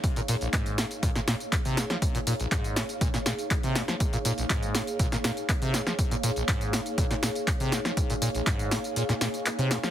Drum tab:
HH |xxoxxxoxxxoxxxox|xxoxxxoxxxoxxxox|xxoxxxoxxxoxxxox|xxoxxxoxxxoxxxox|
TB |xxxxxxxxxxxxxxxx|xxxxxxxxxxxxxxxx|xxxxxxxxxxxxxxxx|xxxxxxxxxxxxxxxx|
CP |----x-------x---|----x-------x---|----x-------x---|----x-------x---|
SD |------o--oo---oo|------o--oo---oo|------o--oo---oo|------o--oo---oo|
BD |o---o---o---o---|o---o---o---o---|o---o---o---o---|o---o---o---o---|

HH |xxoxxxoxxxoxxxox|
TB |xxxxxxxxxxxxxxxx|
CP |----x-------x---|
SD |------o--oo---oo|
BD |o---o-----------|